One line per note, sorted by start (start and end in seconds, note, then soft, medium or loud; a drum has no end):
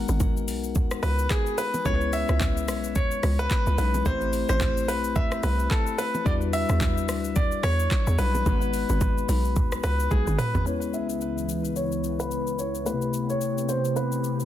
0.00 1.81 G#3 medium
0.00 1.81 B3 medium
0.00 1.82 D#4 medium
0.00 1.82 F#4 medium
0.00 1.83 A#4 medium
0.00 1.08 F#5 loud
0.08 0.49 G#1 loud
0.08 shaker medium
0.20 kick loud
0.20 high bongo medium
0.20 low conga medium
0.20 shaker medium
0.37 shaker medium
0.48 0.97 B1 medium
0.48 open hi-hat medium
0.48 shaker loud
0.64 shaker medium
0.75 kick loud
0.75 low conga medium
0.75 shaker medium
0.91 cross-stick loud
0.91 shaker medium
1.03 1.27 C#2 loud
1.03 1.31 B4 loud
1.03 cross-stick loud
1.03 open hi-hat soft
1.03 low bongo medium
1.03 shaker medium
1.19 shaker medium
1.30 1.59 G#4 loud
1.30 kick loud
1.30 clap loud
1.30 high bongo medium
1.30 shaker medium
1.46 shaker medium
1.58 1.86 B4 medium
1.58 open hi-hat medium
1.58 shaker loud
1.74 low bongo medium
1.74 shaker medium
1.84 2.24 C#2 loud
1.84 3.74 G#3 medium
1.84 3.75 B3 medium
1.84 3.74 C#4 medium
1.84 3.75 E4 medium
1.84 1.94 A4 medium
1.84 2.14 C#5 loud
1.84 kick loud
1.84 low conga medium
1.84 shaker medium
1.95 3.79 B4 medium
2.01 shaker medium
2.13 2.98 E5 loud
2.13 open hi-hat medium
2.13 shaker medium
2.29 2.70 C#2 medium
2.29 cross-stick medium
2.29 shaker medium
2.40 kick loud
2.40 clap loud
2.40 high bongo medium
2.40 low conga medium
2.40 shaker medium
2.57 shaker medium
2.68 3.17 B1 medium
2.68 cross-stick loud
2.68 open hi-hat medium
2.68 shaker loud
2.84 shaker medium
2.96 3.40 C#5 medium
2.96 kick loud
2.96 low conga medium
2.96 shaker medium
3.11 shaker medium
3.23 3.48 C#2 loud
3.23 cross-stick loud
3.23 open hi-hat soft
3.23 low bongo medium
3.23 shaker medium
3.39 3.77 B4 loud
3.39 shaker medium
3.50 kick loud
3.50 clap loud
3.50 high bongo medium
3.50 shaker medium
3.67 3.77 C#2 medium
3.67 shaker medium
3.78 4.03 B1 medium
3.78 4.06 G#3 medium
3.78 4.06 C#4 soft
3.78 4.06 D#4 soft
3.78 4.05 E4 soft
3.78 4.07 B4 medium
3.78 open hi-hat medium
3.78 shaker medium
3.94 low bongo medium
3.94 shaker medium
4.05 4.44 A1 loud
4.05 6.21 A3 medium
4.05 6.22 C4 medium
4.05 6.22 E4 medium
4.05 6.23 G4 medium
4.05 4.48 C5 loud
4.05 kick loud
4.05 low conga medium
4.05 shaker medium
4.09 6.23 C5 medium
4.21 shaker medium
4.33 open hi-hat medium
4.33 shaker medium
4.49 4.90 A1 loud
4.49 4.89 C5 loud
4.49 cross-stick medium
4.49 shaker medium
4.61 kick loud
4.61 clap loud
4.61 high bongo medium
4.61 low conga medium
4.61 shaker medium
4.77 shaker medium
4.88 5.37 B1 medium
4.88 5.17 B4 medium
4.88 open hi-hat medium
4.88 shaker loud
5.04 shaker medium
5.16 5.44 E5 loud
5.16 kick loud
5.16 low conga medium
5.16 shaker medium
5.31 cross-stick loud
5.31 shaker medium
5.43 5.68 C2 loud
5.43 5.72 B4 medium
5.43 cross-stick medium
5.43 open hi-hat soft
5.43 low bongo medium
5.43 shaker medium
5.59 shaker medium
5.71 5.99 A4 medium
5.71 kick loud
5.71 clap loud
5.71 high bongo medium
5.71 shaker medium
5.87 shaker medium
5.98 6.24 B4 medium
5.98 open hi-hat medium
5.98 shaker loud
6.14 low bongo medium
6.14 shaker medium
6.25 6.65 E2 loud
6.25 8.14 G3 medium
6.25 8.15 D4 medium
6.25 8.15 E4 medium
6.25 8.16 F#4 medium
6.25 8.16 B4 medium
6.25 6.32 D5 loud
6.25 kick loud
6.25 low conga medium
6.25 shaker medium
6.41 shaker medium
6.53 7.38 E5 loud
6.53 open hi-hat medium
6.53 shaker medium
6.69 7.10 E2 medium
6.69 cross-stick medium
6.69 shaker medium
6.81 kick loud
6.81 clap loud
6.81 high bongo medium
6.81 low conga medium
6.81 shaker medium
6.98 shaker medium
7.08 7.57 D2 medium
7.08 cross-stick loud
7.08 open hi-hat medium
7.08 shaker loud
7.24 shaker medium
7.36 7.62 D5 medium
7.36 kick loud
7.36 low conga medium
7.36 shaker medium
7.52 shaker medium
7.63 7.88 E2 loud
7.63 8.20 C#5 loud
7.63 cross-stick loud
7.63 open hi-hat soft
7.63 low bongo medium
7.63 shaker medium
7.80 shaker medium
7.91 kick loud
7.91 clap loud
7.91 high bongo medium
7.91 shaker medium
8.07 8.17 E2 loud
8.07 shaker medium
8.18 8.43 B1 medium
8.18 8.46 G3 medium
8.18 8.46 D4 soft
8.18 8.47 E4 soft
8.18 8.47 F#4 soft
8.18 9.82 B4 loud
8.18 8.47 B4 medium
8.18 open hi-hat medium
8.18 shaker loud
8.35 low bongo medium
8.35 shaker medium
8.45 8.85 G#1 loud
8.45 10.62 G#3 medium
8.45 8.54 A#3 medium
8.45 10.63 D#4 medium
8.45 10.63 F#4 medium
8.45 10.64 B4 medium
8.45 kick loud
8.45 low conga medium
8.45 shaker medium
8.52 10.65 B3 medium
8.62 shaker medium
8.73 open hi-hat soft
8.73 shaker medium
8.89 9.24 G#1 loud
8.89 shaker medium
9.01 kick loud
9.01 high bongo medium
9.01 low conga medium
9.01 shaker medium
9.18 shaker medium
9.29 9.78 B1 medium
9.29 open hi-hat medium
9.29 shaker loud
9.45 shaker medium
9.56 kick loud
9.56 low conga medium
9.56 shaker medium
9.72 cross-stick loud
9.72 shaker medium
9.84 10.08 C#2 loud
9.84 10.09 B4 loud
9.84 cross-stick loud
9.84 open hi-hat soft
9.84 low bongo medium
9.84 shaker medium
10.00 shaker medium
10.11 10.25 B1 loud
10.11 10.39 G#4 medium
10.11 kick loud
10.11 high tom medium
10.11 high bongo medium
10.11 shaker medium
10.27 10.37 G#1 loud
10.27 mid tom medium
10.27 shaker medium
10.38 10.67 B4 medium
10.38 mid tom loud
10.38 open hi-hat medium
10.38 shaker medium
10.55 10.65 G#1 medium
10.55 floor tom loud
10.55 low bongo medium
10.55 shaker medium
10.65 12.84 C#2 medium
10.65 12.84 E3 medium
10.65 12.82 G#3 medium
10.65 14.45 B3 medium
10.65 12.83 B3 medium
10.65 12.82 C#4 medium
10.65 12.84 E4 medium
10.65 12.83 E4 medium
10.65 12.84 B4 medium
10.65 10.92 C#5 loud
10.65 shaker medium
10.82 shaker soft
10.94 11.79 E5 loud
10.94 shaker medium
11.09 shaker medium
11.21 shaker medium
11.38 shaker medium
11.49 shaker loud
11.65 shaker soft
11.76 12.21 C#5 loud
11.76 shaker medium
11.92 shaker medium
12.04 shaker medium
12.20 12.56 B4 loud
12.20 shaker medium
12.31 shaker medium
12.47 shaker soft
12.59 12.87 C#5 medium
12.59 shaker medium
12.75 shaker medium
12.85 14.45 C3 medium
12.85 14.45 A3 medium
12.85 12.94 B3 soft
12.85 14.45 E4 medium
12.85 14.45 G4 medium
12.85 13.27 B4 medium
12.85 shaker medium
12.89 14.45 C3 medium
12.89 14.45 B4 medium
13.02 shaker soft
13.14 shaker medium
13.30 13.70 C#5 loud
13.30 shaker medium
13.41 shaker medium
13.58 shaker medium
13.69 13.97 C5 medium
13.69 shaker loud
13.85 shaker soft
13.96 14.45 B4 medium
13.96 shaker medium
14.12 shaker medium
14.24 shaker medium
14.40 shaker medium